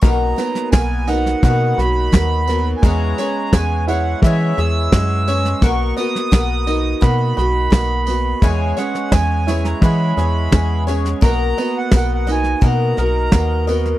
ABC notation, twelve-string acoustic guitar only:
X:1
M:4/4
L:1/8
Q:1/4=86
K:B
V:1 name="Twelve-string acoustic guitar"
[B,,D,F,B,DA] [F,B,DA] [F,B,DA] [F,B,DA] [B,,D,F,B,DA] [F,B,D] [F,B,D] [F,B,DA] | [C,E,B,CGc] [B,CGc] [B,CGc] [B,CGc] [C,E,B,CGc] [B,CGc] [B,CGc] [B,CGc] | [B,FAd] [FAd] [B,FAd] [FAd] [B,Fd] [Fd] [B,Fd] [Fd] | [C,E,B,CGc] [B,CGc] [B,CGc] [B,CGc] [C,E,B,CGc] [B,CGc] [B,CGc] [B,CGc] |
[B,FAd] [FAd] [B,FAd] [FAd] [B,FAd] [FAd] [B,FAd] [FAd] |]